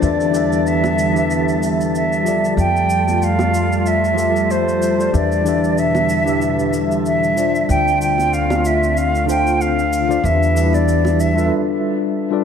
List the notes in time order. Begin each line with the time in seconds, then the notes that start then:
Already playing: A4 A5
0.01 E2 D3 E3 G3 B3 D4 G4 B4 D5 E5, shaker
0.20 shaker
0.31 E3 D4 G4, shaker
0.35 B4 E5
0.53 shaker
0.67 E5, shaker
0.84 high bongo, shaker
0.99 shaker
1.13 E3 D4 G4, shaker
1.17 B4 E5
1.31 shaker
1.49 shaker
1.63 shaker
1.81 shaker
1.95 E5, shaker
2.13 shaker
2.22 F3 F4 G4 A4
2.27 D5, shaker
2.45 shaker
2.57 F2 A3 F4 G5, shaker
2.77 shaker
2.90 shaker
3.08 high bongo, shaker
3.16 G5
3.22 F5, shaker
3.39 high bongo, shaker
3.54 shaker
3.72 shaker
3.86 E5, shaker
4.04 shaker
4.13 F3 F4 G4 A4
4.18 E5, shaker
4.36 shaker
4.51 C5, shaker
4.69 shaker
4.83 shaker
4.98 F3 F4 G4 A4 D5, shaker
5.12 E2 B2 D3 E3 D4 G4 B4 D5 E5, shaker
5.32 shaker
5.43 E3 D4 G4, shaker
5.47 B4 E5
5.64 shaker
5.78 E5, shaker
5.95 high bongo, shaker
6.09 shaker
6.23 E3 D4 G4
6.27 B4 E5, shaker
6.42 shaker
6.59 shaker
6.74 shaker
6.92 shaker
7.06 E5, shaker
7.24 shaker
7.33 D3 D4 F4
7.37 C5 D5, shaker
7.55 shaker
7.69 D2 A3 C4 F4 G5, shaker
7.88 shaker
8.02 G5, shaker
8.18 high bongo, shaker
8.33 F5, shaker
8.50 high bongo, shaker
8.65 E5, shaker
8.83 shaker
8.97 F5, shaker
9.15 shaker
9.25 D3 D4 F4
9.29 C5 F5 G5, shaker
9.47 shaker
9.61 F5, shaker
9.79 shaker
9.93 shaker
10.08 D3 D4 F4 C5 D5, shaker
10.22 E2 E3 G3 B3 D4 E4 G4 B4 E5, shaker
10.43 shaker
10.52 E3 D4 G4
10.56 B4 E5, shaker
10.73 D5, high bongo, shaker
10.88 shaker
11.05 high bongo, shaker
11.20 E5, shaker
11.33 G3 D4 F4 A4
11.38 B4 E5, shaker
12.30 G3 D4 F4 A4 B4 D5